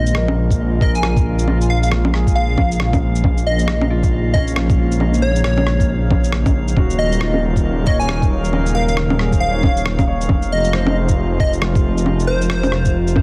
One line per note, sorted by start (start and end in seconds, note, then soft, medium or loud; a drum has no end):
0.00 6.75 A#1 medium
0.00 10.26 C#3 medium
0.00 6.73 F3 medium
0.00 6.73 G#3 medium
0.00 6.73 A#3 medium
0.00 3.20 F4 medium
0.00 0.37 D#5 medium
0.00 13.22 F5 medium
0.06 shaker medium
0.15 0.79 A#4 medium
0.15 cross-stick loud
0.28 low bongo medium
0.51 kick medium
0.51 shaker medium
0.81 1.49 G#4 medium
0.81 1.48 A#4 medium
0.81 0.92 D#5 medium
0.81 kick loud
0.95 1.18 G#5 medium
0.95 shaker medium
1.03 cross-stick loud
1.17 kick loud
1.17 shaker soft
1.39 shaker medium
1.48 2.15 F4 medium
1.48 low bongo medium
1.61 shaker soft
1.70 1.78 F5 medium
1.83 1.89 F5 medium
1.83 shaker medium
1.91 cross-stick loud
2.05 low bongo medium
2.14 2.81 G#4 medium
2.14 cross-stick medium
2.27 kick medium
2.27 shaker medium
2.35 2.98 F5 loud
2.58 kick loud
2.58 low bongo medium
2.71 shaker medium
2.80 cross-stick loud
2.93 kick loud
2.93 low bongo medium
2.93 shaker soft
3.15 shaker medium
3.24 13.22 D#4 medium
3.24 kick loud
3.24 low bongo medium
3.37 shaker soft
3.47 3.90 D#5 medium
3.59 shaker medium
3.68 cross-stick loud
3.81 low bongo medium
3.90 4.58 F4 medium
4.03 kick medium
4.03 shaker medium
4.34 5.02 C#4 medium
4.34 4.45 D#5 medium
4.34 kick loud
4.47 shaker medium
4.56 cross-stick loud
4.70 kick loud
4.70 shaker soft
4.78 5.46 F4 medium
4.92 shaker medium
5.00 low bongo soft
5.14 shaker soft
5.22 5.43 C#5 medium
5.36 shaker medium
5.44 5.89 C#5 medium
5.44 cross-stick loud
5.58 low bongo medium
5.67 cross-stick medium
5.80 kick medium
5.80 shaker medium
6.11 kick loud
6.11 low bongo medium
6.24 shaker medium
6.32 cross-stick loud
6.46 kick loud
6.46 low bongo medium
6.46 shaker soft
6.68 shaker medium
6.77 10.28 D#1 medium
6.77 10.27 F#3 medium
6.77 10.27 A#3 medium
6.77 7.44 F#4 medium
6.77 10.27 A#4 medium
6.77 kick loud
6.77 low bongo soft
6.90 shaker soft
6.99 7.43 D#5 loud
7.12 shaker medium
7.20 7.88 F4 medium
7.20 cross-stick loud
7.34 low bongo medium
7.56 kick medium
7.56 shaker medium
7.86 8.54 C#5 medium
7.86 7.97 D#5 medium
7.86 kick loud
8.00 8.23 G#5 loud
8.00 shaker medium
8.09 cross-stick loud
8.22 kick loud
8.22 shaker soft
8.44 shaker soft
8.53 low bongo soft
8.66 shaker soft
8.75 9.42 A#4 medium
8.75 8.84 F5 medium
8.88 8.94 F5 medium
8.88 shaker medium
8.97 cross-stick loud
9.10 low bongo medium
9.19 9.87 G#4 medium
9.19 cross-stick medium
9.32 kick medium
9.32 shaker medium
9.37 10.01 C5 medium
9.37 10.04 F5 medium
9.51 10.06 C#5 medium
9.63 kick loud
9.63 low bongo medium
9.77 shaker medium
9.86 cross-stick loud
9.99 kick loud
9.99 low bongo medium
9.99 shaker soft
10.07 10.49 C#5 medium
10.21 shaker medium
10.29 13.22 F1 medium
10.29 13.22 C3 medium
10.29 13.22 F3 medium
10.29 13.22 G#3 medium
10.29 13.22 F4 medium
10.29 kick loud
10.29 low bongo medium
10.42 shaker soft
10.52 10.96 D#5 loud
10.64 shaker medium
10.73 11.41 C5 medium
10.73 cross-stick loud
10.87 low bongo medium
11.09 kick medium
11.09 shaker medium
11.40 11.51 D#5 medium
11.40 kick loud
11.53 shaker medium
11.62 cross-stick loud
11.75 kick loud
11.75 shaker soft
11.98 shaker medium
12.06 low bongo medium
12.20 shaker soft
12.27 12.95 A#4 medium
12.27 12.48 C5 medium
12.42 shaker medium
12.50 12.94 C5 loud
12.50 cross-stick loud
12.63 low bongo medium
12.63 shaker soft
12.72 cross-stick medium
12.85 kick medium
12.85 shaker medium
13.07 shaker soft
13.16 kick loud
13.16 low bongo medium